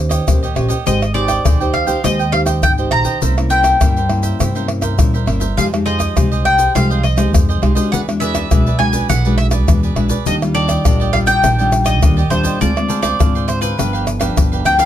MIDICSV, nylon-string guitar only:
0, 0, Header, 1, 2, 480
1, 0, Start_track
1, 0, Tempo, 587084
1, 707, Time_signature, 4, 2, 24, 8
1, 12145, End_track
2, 0, Start_track
2, 0, Title_t, "Nylon-string guitar"
2, 0, Program_c, 0, 24
2, 0, Note_on_c, 0, 51, 49
2, 0, Note_on_c, 0, 61, 61
2, 0, Note_on_c, 0, 67, 61
2, 0, Note_on_c, 0, 72, 67
2, 189, Note_off_c, 0, 61, 0
2, 191, Note_off_c, 0, 67, 0
2, 193, Note_off_c, 0, 72, 0
2, 200, Note_off_c, 0, 51, 0
2, 224, Note_on_c, 0, 46, 53
2, 225, Note_on_c, 0, 61, 56
2, 229, Note_on_c, 0, 67, 51
2, 232, Note_on_c, 0, 72, 60
2, 367, Note_off_c, 0, 61, 0
2, 368, Note_off_c, 0, 67, 0
2, 370, Note_off_c, 0, 72, 0
2, 453, Note_on_c, 0, 61, 61
2, 458, Note_on_c, 0, 67, 54
2, 460, Note_on_c, 0, 72, 58
2, 616, Note_off_c, 0, 61, 0
2, 616, Note_off_c, 0, 67, 0
2, 618, Note_off_c, 0, 72, 0
2, 683, Note_off_c, 0, 46, 0
2, 703, Note_on_c, 0, 56, 52
2, 705, Note_on_c, 0, 63, 52
2, 706, Note_on_c, 0, 67, 52
2, 710, Note_on_c, 0, 72, 56
2, 847, Note_off_c, 0, 63, 0
2, 849, Note_off_c, 0, 67, 0
2, 850, Note_off_c, 0, 72, 0
2, 934, Note_on_c, 0, 63, 61
2, 939, Note_on_c, 0, 67, 58
2, 941, Note_on_c, 0, 72, 57
2, 1163, Note_off_c, 0, 56, 0
2, 1167, Note_off_c, 0, 63, 0
2, 1169, Note_off_c, 0, 67, 0
2, 1170, Note_off_c, 0, 72, 0
2, 1184, Note_on_c, 0, 51, 52
2, 1310, Note_on_c, 0, 63, 58
2, 1317, Note_on_c, 0, 67, 60
2, 1318, Note_on_c, 0, 72, 68
2, 1512, Note_off_c, 0, 63, 0
2, 1514, Note_off_c, 0, 67, 0
2, 1516, Note_off_c, 0, 72, 0
2, 1529, Note_on_c, 0, 63, 59
2, 1533, Note_on_c, 0, 67, 59
2, 1537, Note_on_c, 0, 72, 69
2, 1621, Note_off_c, 0, 63, 0
2, 1624, Note_off_c, 0, 67, 0
2, 1625, Note_off_c, 0, 72, 0
2, 1644, Note_off_c, 0, 51, 0
2, 1662, Note_on_c, 0, 56, 53
2, 1666, Note_on_c, 0, 63, 50
2, 1667, Note_on_c, 0, 67, 51
2, 1671, Note_on_c, 0, 72, 56
2, 1809, Note_off_c, 0, 63, 0
2, 1810, Note_off_c, 0, 67, 0
2, 1812, Note_off_c, 0, 72, 0
2, 1902, Note_on_c, 0, 63, 58
2, 1905, Note_on_c, 0, 67, 55
2, 1909, Note_on_c, 0, 72, 58
2, 2124, Note_off_c, 0, 56, 0
2, 2133, Note_off_c, 0, 63, 0
2, 2133, Note_off_c, 0, 67, 0
2, 2136, Note_off_c, 0, 72, 0
2, 2148, Note_on_c, 0, 51, 58
2, 2275, Note_on_c, 0, 63, 61
2, 2279, Note_on_c, 0, 67, 58
2, 2281, Note_on_c, 0, 72, 64
2, 2596, Note_off_c, 0, 63, 0
2, 2597, Note_off_c, 0, 67, 0
2, 2599, Note_off_c, 0, 72, 0
2, 2607, Note_off_c, 0, 51, 0
2, 2631, Note_on_c, 0, 48, 53
2, 2635, Note_on_c, 0, 58, 50
2, 2636, Note_on_c, 0, 61, 57
2, 2640, Note_on_c, 0, 64, 59
2, 2715, Note_off_c, 0, 58, 0
2, 2716, Note_off_c, 0, 61, 0
2, 2718, Note_off_c, 0, 64, 0
2, 2759, Note_on_c, 0, 58, 56
2, 2762, Note_on_c, 0, 61, 58
2, 2768, Note_on_c, 0, 64, 65
2, 3079, Note_off_c, 0, 58, 0
2, 3081, Note_off_c, 0, 61, 0
2, 3082, Note_off_c, 0, 64, 0
2, 3090, Note_off_c, 0, 48, 0
2, 3112, Note_on_c, 0, 55, 54
2, 3115, Note_on_c, 0, 61, 55
2, 3116, Note_on_c, 0, 58, 57
2, 3121, Note_on_c, 0, 64, 60
2, 3255, Note_off_c, 0, 58, 0
2, 3257, Note_off_c, 0, 61, 0
2, 3258, Note_off_c, 0, 64, 0
2, 3342, Note_on_c, 0, 58, 59
2, 3345, Note_on_c, 0, 61, 55
2, 3350, Note_on_c, 0, 64, 61
2, 3570, Note_off_c, 0, 55, 0
2, 3596, Note_on_c, 0, 48, 52
2, 3670, Note_off_c, 0, 58, 0
2, 3673, Note_off_c, 0, 61, 0
2, 3674, Note_off_c, 0, 64, 0
2, 3717, Note_on_c, 0, 58, 58
2, 3721, Note_on_c, 0, 61, 63
2, 3726, Note_on_c, 0, 64, 65
2, 4039, Note_off_c, 0, 58, 0
2, 4040, Note_off_c, 0, 61, 0
2, 4043, Note_off_c, 0, 64, 0
2, 4052, Note_off_c, 0, 48, 0
2, 4073, Note_on_c, 0, 55, 54
2, 4074, Note_on_c, 0, 58, 58
2, 4079, Note_on_c, 0, 61, 57
2, 4081, Note_on_c, 0, 64, 67
2, 4216, Note_off_c, 0, 58, 0
2, 4217, Note_off_c, 0, 61, 0
2, 4220, Note_off_c, 0, 64, 0
2, 4306, Note_on_c, 0, 58, 56
2, 4310, Note_on_c, 0, 61, 56
2, 4314, Note_on_c, 0, 64, 64
2, 4466, Note_off_c, 0, 58, 0
2, 4468, Note_off_c, 0, 61, 0
2, 4470, Note_off_c, 0, 64, 0
2, 4532, Note_off_c, 0, 55, 0
2, 4558, Note_on_c, 0, 53, 55
2, 4558, Note_on_c, 0, 56, 51
2, 4562, Note_on_c, 0, 63, 60
2, 4564, Note_on_c, 0, 67, 60
2, 4639, Note_off_c, 0, 56, 0
2, 4640, Note_off_c, 0, 63, 0
2, 4642, Note_off_c, 0, 67, 0
2, 4683, Note_on_c, 0, 56, 59
2, 4686, Note_on_c, 0, 63, 56
2, 4691, Note_on_c, 0, 67, 61
2, 5002, Note_off_c, 0, 56, 0
2, 5004, Note_off_c, 0, 63, 0
2, 5006, Note_off_c, 0, 67, 0
2, 5014, Note_off_c, 0, 53, 0
2, 5037, Note_on_c, 0, 48, 52
2, 5041, Note_on_c, 0, 63, 55
2, 5042, Note_on_c, 0, 56, 49
2, 5047, Note_on_c, 0, 67, 62
2, 5348, Note_off_c, 0, 56, 0
2, 5349, Note_off_c, 0, 63, 0
2, 5350, Note_off_c, 0, 67, 0
2, 5494, Note_off_c, 0, 48, 0
2, 5515, Note_on_c, 0, 53, 54
2, 5518, Note_on_c, 0, 56, 55
2, 5524, Note_on_c, 0, 67, 52
2, 5525, Note_on_c, 0, 63, 56
2, 5743, Note_off_c, 0, 56, 0
2, 5744, Note_off_c, 0, 63, 0
2, 5746, Note_off_c, 0, 67, 0
2, 5862, Note_on_c, 0, 56, 65
2, 5868, Note_on_c, 0, 63, 61
2, 5868, Note_on_c, 0, 67, 62
2, 5973, Note_off_c, 0, 53, 0
2, 5997, Note_on_c, 0, 48, 54
2, 6192, Note_off_c, 0, 56, 0
2, 6193, Note_off_c, 0, 63, 0
2, 6194, Note_off_c, 0, 67, 0
2, 6228, Note_on_c, 0, 56, 57
2, 6231, Note_on_c, 0, 63, 61
2, 6236, Note_on_c, 0, 67, 63
2, 6314, Note_off_c, 0, 56, 0
2, 6317, Note_off_c, 0, 63, 0
2, 6318, Note_off_c, 0, 67, 0
2, 6338, Note_on_c, 0, 56, 66
2, 6344, Note_on_c, 0, 62, 71
2, 6346, Note_on_c, 0, 66, 71
2, 6454, Note_off_c, 0, 48, 0
2, 6477, Note_on_c, 0, 52, 58
2, 6550, Note_off_c, 0, 56, 0
2, 6551, Note_off_c, 0, 62, 0
2, 6554, Note_off_c, 0, 66, 0
2, 6604, Note_on_c, 0, 56, 53
2, 6609, Note_on_c, 0, 62, 57
2, 6610, Note_on_c, 0, 66, 61
2, 6923, Note_off_c, 0, 56, 0
2, 6924, Note_off_c, 0, 62, 0
2, 6926, Note_off_c, 0, 66, 0
2, 6933, Note_off_c, 0, 52, 0
2, 6955, Note_on_c, 0, 47, 52
2, 6958, Note_on_c, 0, 56, 55
2, 6960, Note_on_c, 0, 62, 56
2, 6964, Note_on_c, 0, 66, 63
2, 7098, Note_off_c, 0, 56, 0
2, 7100, Note_off_c, 0, 62, 0
2, 7102, Note_off_c, 0, 66, 0
2, 7186, Note_on_c, 0, 56, 58
2, 7191, Note_on_c, 0, 62, 56
2, 7192, Note_on_c, 0, 66, 57
2, 7413, Note_off_c, 0, 47, 0
2, 7417, Note_off_c, 0, 56, 0
2, 7418, Note_off_c, 0, 62, 0
2, 7420, Note_off_c, 0, 66, 0
2, 7436, Note_on_c, 0, 52, 52
2, 7566, Note_on_c, 0, 56, 63
2, 7571, Note_on_c, 0, 62, 64
2, 7573, Note_on_c, 0, 66, 69
2, 7884, Note_off_c, 0, 56, 0
2, 7884, Note_off_c, 0, 62, 0
2, 7887, Note_off_c, 0, 66, 0
2, 7893, Note_off_c, 0, 52, 0
2, 7915, Note_on_c, 0, 47, 56
2, 7919, Note_on_c, 0, 56, 58
2, 7920, Note_on_c, 0, 62, 60
2, 7924, Note_on_c, 0, 66, 65
2, 8119, Note_off_c, 0, 56, 0
2, 8120, Note_off_c, 0, 62, 0
2, 8122, Note_off_c, 0, 66, 0
2, 8147, Note_on_c, 0, 56, 64
2, 8151, Note_on_c, 0, 62, 63
2, 8156, Note_on_c, 0, 66, 67
2, 8307, Note_off_c, 0, 56, 0
2, 8309, Note_off_c, 0, 62, 0
2, 8310, Note_off_c, 0, 66, 0
2, 8372, Note_off_c, 0, 47, 0
2, 8393, Note_on_c, 0, 51, 57
2, 8397, Note_on_c, 0, 55, 57
2, 8401, Note_on_c, 0, 65, 59
2, 8403, Note_on_c, 0, 62, 57
2, 8468, Note_off_c, 0, 55, 0
2, 8469, Note_off_c, 0, 62, 0
2, 8471, Note_off_c, 0, 65, 0
2, 8522, Note_on_c, 0, 55, 60
2, 8527, Note_on_c, 0, 62, 56
2, 8529, Note_on_c, 0, 65, 66
2, 8841, Note_off_c, 0, 55, 0
2, 8843, Note_off_c, 0, 62, 0
2, 8844, Note_off_c, 0, 65, 0
2, 8851, Note_off_c, 0, 51, 0
2, 8877, Note_on_c, 0, 46, 55
2, 8878, Note_on_c, 0, 55, 58
2, 8881, Note_on_c, 0, 62, 58
2, 8887, Note_on_c, 0, 65, 56
2, 9078, Note_off_c, 0, 55, 0
2, 9080, Note_off_c, 0, 62, 0
2, 9081, Note_off_c, 0, 65, 0
2, 9105, Note_on_c, 0, 55, 57
2, 9110, Note_on_c, 0, 62, 55
2, 9113, Note_on_c, 0, 65, 66
2, 9333, Note_off_c, 0, 46, 0
2, 9354, Note_on_c, 0, 51, 52
2, 9432, Note_off_c, 0, 55, 0
2, 9433, Note_off_c, 0, 62, 0
2, 9436, Note_off_c, 0, 65, 0
2, 9481, Note_on_c, 0, 55, 70
2, 9485, Note_on_c, 0, 62, 62
2, 9487, Note_on_c, 0, 65, 74
2, 9799, Note_off_c, 0, 55, 0
2, 9801, Note_off_c, 0, 62, 0
2, 9802, Note_off_c, 0, 65, 0
2, 9810, Note_off_c, 0, 51, 0
2, 9835, Note_on_c, 0, 46, 61
2, 9838, Note_on_c, 0, 55, 55
2, 9839, Note_on_c, 0, 62, 57
2, 9844, Note_on_c, 0, 65, 68
2, 9976, Note_off_c, 0, 55, 0
2, 9978, Note_off_c, 0, 62, 0
2, 9979, Note_off_c, 0, 65, 0
2, 10064, Note_on_c, 0, 55, 63
2, 10068, Note_on_c, 0, 62, 62
2, 10072, Note_on_c, 0, 65, 59
2, 10289, Note_off_c, 0, 55, 0
2, 10290, Note_off_c, 0, 46, 0
2, 10292, Note_off_c, 0, 62, 0
2, 10293, Note_off_c, 0, 65, 0
2, 10312, Note_on_c, 0, 50, 59
2, 10315, Note_on_c, 0, 56, 57
2, 10316, Note_on_c, 0, 60, 55
2, 10320, Note_on_c, 0, 65, 68
2, 10386, Note_off_c, 0, 56, 0
2, 10387, Note_off_c, 0, 60, 0
2, 10388, Note_off_c, 0, 65, 0
2, 10440, Note_on_c, 0, 56, 60
2, 10444, Note_on_c, 0, 60, 58
2, 10451, Note_on_c, 0, 65, 59
2, 10758, Note_off_c, 0, 56, 0
2, 10760, Note_off_c, 0, 60, 0
2, 10761, Note_off_c, 0, 65, 0
2, 10768, Note_off_c, 0, 50, 0
2, 10793, Note_on_c, 0, 50, 59
2, 10797, Note_on_c, 0, 56, 58
2, 10797, Note_on_c, 0, 60, 51
2, 10803, Note_on_c, 0, 65, 69
2, 11234, Note_off_c, 0, 56, 0
2, 11236, Note_off_c, 0, 60, 0
2, 11238, Note_off_c, 0, 65, 0
2, 11248, Note_off_c, 0, 50, 0
2, 11269, Note_on_c, 0, 43, 51
2, 11270, Note_on_c, 0, 53, 50
2, 11273, Note_on_c, 0, 59, 62
2, 11277, Note_on_c, 0, 62, 53
2, 11591, Note_off_c, 0, 53, 0
2, 11593, Note_off_c, 0, 59, 0
2, 11595, Note_off_c, 0, 62, 0
2, 11612, Note_on_c, 0, 53, 62
2, 11615, Note_on_c, 0, 59, 59
2, 11620, Note_on_c, 0, 62, 75
2, 11725, Note_off_c, 0, 43, 0
2, 11752, Note_on_c, 0, 50, 63
2, 11942, Note_off_c, 0, 53, 0
2, 11944, Note_off_c, 0, 59, 0
2, 11946, Note_off_c, 0, 62, 0
2, 11981, Note_on_c, 0, 53, 58
2, 11987, Note_on_c, 0, 59, 59
2, 11989, Note_on_c, 0, 62, 66
2, 12140, Note_off_c, 0, 53, 0
2, 12141, Note_off_c, 0, 59, 0
2, 12144, Note_off_c, 0, 62, 0
2, 12145, Note_off_c, 0, 50, 0
2, 12145, End_track
0, 0, End_of_file